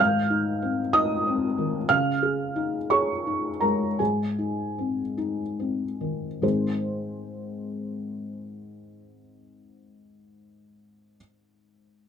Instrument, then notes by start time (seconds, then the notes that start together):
felt piano
Already playing: D#3
0.00 G#2 F5 F6
0.30 D#4
0.62 C4
0.93 D#4 D#5 D#6
1.27 C4
1.58 D#3
1.89 C#3 F5 F6
2.23 G#4
2.56 D#4
2.90 G#4 C#5 C#6
3.27 D#4
3.60 G#3 A#4 A#5
3.99 G#2 G#4 G#5
4.39 D#4
4.78 C4
5.18 D#4
5.60 C4
6.01 D#3
6.42 G#2 D#3 C4 D#4 G#4 C5